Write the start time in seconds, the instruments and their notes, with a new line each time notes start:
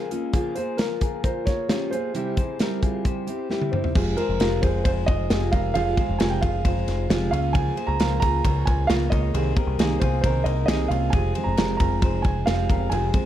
Already playing: steel-string acoustic guitar F3 G#3 C4, clean electric guitar G#4, upright piano A#4
0.11 steel-string acoustic guitar A#3 F4 G#4, clean electric guitar C#4 F4, closed hi-hat
0.33 steel-string acoustic guitar C#3 F3 A#3 F4 G#4, clean electric guitar F4 G#4, kick, closed hi-hat
0.55 steel-string acoustic guitar A#3 F4 G#4, clean electric guitar G#4 C5, upright piano C5, closed hi-hat
0.77 steel-string acoustic guitar F3 A#3 F4 G#4, clean electric guitar F4 A#4, upright piano A#4, snare, closed hi-hat
1.01 clean electric guitar F4 G#4, kick, closed hi-hat
1.24 clean electric guitar F4 A#4, upright piano C5, kick, closed hi-hat
1.45 steel-string acoustic guitar A#3 F4 G#4, upright piano C#5, kick, snare, closed hi-hat
1.68 steel-string acoustic guitar F3 A#3 F4 G#4, clean electric guitar C#4 G4, snare, closed hi-hat
1.91 steel-string acoustic guitar A#3 F4 G#4, clean electric guitar F4 G#4, upright piano C5, closed hi-hat
2.14 steel-string acoustic guitar C3 G3 C4 E4 G4, clean electric guitar E4 G4, closed hi-hat
2.37 steel-string acoustic guitar C4 E4 G4, clean electric guitar G#4 C5, kick, closed hi-hat
2.59 steel-string acoustic guitar G3 C4 E4 G4, clean electric guitar G4 A#4, snare, closed hi-hat
2.83 clean electric guitar F4 G#4, kick, closed hi-hat
3.05 clean electric guitar G4 C5, kick, closed hi-hat
3.27 steel-string acoustic guitar C4 E4 G4, closed hi-hat
3.49 steel-string acoustic guitar G3 C4 E4 G4, clean electric guitar E4 G4, snare
3.61 high tom
3.72 clean electric guitar C4 E4, steel-string acoustic guitar C4 E4 G4, upright piano C5, mid tom
3.84 floor tom
3.95 picked electric bass F1, steel-string acoustic guitar F2 C3 F3 G#3 F4 G#4, clean electric guitar F4 G#4, kick, crash
4.17 steel-string acoustic guitar F3 G#3 F4 G#4, clean electric guitar G#4 C5, upright piano A#4, ride
4.29 picked electric bass F1
4.39 picked electric bass F1, steel-string acoustic guitar F2 C3 F3 G#3 F4 G#4, clean electric guitar F4 A#4, snare, ride
4.61 picked electric bass F1, steel-string acoustic guitar F3 G#3 F4 G#4, clean electric guitar F4 G#4, upright piano C5, kick, ride
4.84 picked electric bass F1, steel-string acoustic guitar F3 G#3 F4 G#4, clean electric guitar G#4 C5, upright piano C5, kick, ride
5.06 picked electric bass F1, upright piano D#5, kick, ride
5.30 picked electric bass F1, steel-string acoustic guitar F2 C3 F3 G#3 F4 G#4, clean electric guitar F4 G#4, snare, ride
5.52 picked electric bass F1, steel-string acoustic guitar F3 G#3 F4 G#4, clean electric guitar G4 A#4, upright piano F5, kick, ride
5.74 picked electric bass F1, steel-string acoustic guitar F2 C3 F3 G#3 F4 G#4, clean electric guitar F4 G#4, upright piano F5, ride
5.97 steel-string acoustic guitar F3 G#3 F4 G#4, clean electric guitar G#4 C5, kick, ride
6.09 picked electric bass F1
6.18 picked electric bass F1, steel-string acoustic guitar F2 C3 F3 G#3 F4 G#4, clean electric guitar F4 A#4, upright piano G#5, snare, ride
6.30 upright piano G5
6.41 picked electric bass F1, steel-string acoustic guitar F3 G#3 F4 G#4, clean electric guitar F4 G#4, upright piano F5, kick, ride
6.64 picked electric bass F1, steel-string acoustic guitar F3 G#3 F4 G#4, clean electric guitar G#4 C5, kick, ride
6.88 picked electric bass F1, snare, ride
7.09 picked electric bass F1, steel-string acoustic guitar F2 C3 F3 G#3 F4 G#4, clean electric guitar F4 G#4, snare, ride
7.31 picked electric bass C#2, steel-string acoustic guitar A#3 F4 G#4, clean electric guitar C#4 F4, upright piano F5, ride
7.53 steel-string acoustic guitar C#3 F3 A#3 F4 G#4, clean electric guitar F4 G#4, upright piano G#5, kick, ride
7.76 steel-string acoustic guitar A#3 F4 G#4, clean electric guitar G#4 C5, ride
7.87 picked electric bass C#2, upright piano A#5
7.99 picked electric bass C#2, steel-string acoustic guitar C#3 F3 A#3 F4 G#4, clean electric guitar F4 A#4, snare, ride
8.20 picked electric bass C#2, steel-string acoustic guitar A#3 F4 G#4, clean electric guitar F4 G#4, upright piano A#5, kick, ride
8.44 picked electric bass C#2, steel-string acoustic guitar F3 A#3 F4 G#4, clean electric guitar A#4 C#5, kick, ride
8.65 picked electric bass C#2, upright piano G#5, kick, ride
8.87 picked electric bass C#2, steel-string acoustic guitar C#3 F3 A#3 F4 G#4, clean electric guitar F4 A#4, upright piano F5, snare, ride
9.10 picked electric bass C#2, steel-string acoustic guitar A#3 F4 G#4, clean electric guitar A#4 C#5, upright piano D#5, kick, ride
9.34 picked electric bass C2, steel-string acoustic guitar C3 D#3 A#3 C4 G#4, clean electric guitar G#4 C5, ride
9.56 steel-string acoustic guitar A#3 C4 G#4, clean electric guitar G4 A#4, kick, ride
9.67 picked electric bass C2
9.78 picked electric bass C2, steel-string acoustic guitar C3 D#3 A#3 C4 G#4, clean electric guitar D#4 G#4, snare, ride
10.00 picked electric bass C2, steel-string acoustic guitar A#3 C4 G#4, clean electric guitar F4 G#4, upright piano C5, kick, ride
10.21 picked electric bass C2, steel-string acoustic guitar D#3 A#3 C4 G#4, clean electric guitar D#4 A#4, upright piano C5, kick, ride
10.44 picked electric bass C2, upright piano D#5, ride
10.66 picked electric bass C2, steel-string acoustic guitar C3 D#3 A#3, clean electric guitar D#4 G#4, upright piano D#5, snare, ride
10.70 steel-string acoustic guitar C4 G#4
10.88 picked electric bass C2, steel-string acoustic guitar C4 G#4, clean electric guitar C#4 F4, upright piano F5, ride
10.93 steel-string acoustic guitar A#3
11.10 picked electric bass F1, steel-string acoustic guitar F2 C3, clean electric guitar F4 G#4, upright piano G#5, kick, ride
11.14 steel-string acoustic guitar F3 G#3 C4 G#4
11.35 steel-string acoustic guitar F3 G#3 C4 G#4, clean electric guitar G#4 C5, ride
11.44 picked electric bass F1, upright piano A#5
11.57 picked electric bass F1, steel-string acoustic guitar F2 C3 F3 G#3 C4 G#4, clean electric guitar F4 A#4, snare, ride
11.77 picked electric bass F1, steel-string acoustic guitar C4 G#4, clean electric guitar F4 G#4, upright piano A#5, kick, ride
11.81 steel-string acoustic guitar F3 G#3
12.02 picked electric bass F1, steel-string acoustic guitar F3 G#3 C4 G#4, clean electric guitar G#4 C5, kick, ride
12.22 picked electric bass F1, upright piano G#5, kick, ride
12.46 picked electric bass F1, steel-string acoustic guitar F2 C3 F3 G#3 C4 G#4, clean electric guitar F4 G#4, upright piano F5, snare, ride
12.69 picked electric bass F1, steel-string acoustic guitar F3 G#3 C4 G#4, clean electric guitar G4 A#4, kick, ride
12.90 picked electric bass F1, steel-string acoustic guitar F2 C3 F3 G#3 C4 G#4, clean electric guitar F4 G#4, upright piano G#5, ride
13.14 steel-string acoustic guitar F3 G#3 C4 G#4, clean electric guitar G#4 C5, kick, ride